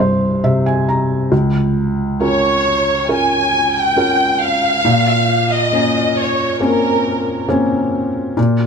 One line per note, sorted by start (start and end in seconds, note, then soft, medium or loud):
0.00 1.28 C2 soft
0.00 1.28 G2 soft
0.00 0.41 C5 medium
0.44 1.29 C3 soft
0.44 0.64 E5 medium
0.66 0.86 G#5 medium
0.89 1.29 A#5 soft
1.32 4.81 C#2 medium
2.20 3.06 C#4 soft
2.20 3.06 F4 soft
2.20 3.06 A#4 soft
2.20 3.06 C#5 medium
3.09 3.94 C#4 soft
3.09 3.94 F4 soft
3.09 3.94 A#4 soft
3.09 3.76 G#5 loud
3.77 4.42 G5 medium
3.96 4.82 C#4 soft
3.96 4.82 F4 soft
3.96 4.83 A#4 soft
4.43 5.52 F5 loud
4.85 8.34 A#2 medium
5.53 6.18 D#5 medium
5.72 6.58 A#3 soft
5.72 6.59 C#4 soft
6.18 6.62 C#5 medium
6.60 7.46 A#3 soft
6.60 7.47 C4 soft
6.60 7.47 C#4 soft
6.60 7.46 A#4 medium
7.48 8.34 A#3 soft
7.48 8.35 C4 soft
7.48 8.35 C#4 medium
8.37 8.66 A#2 medium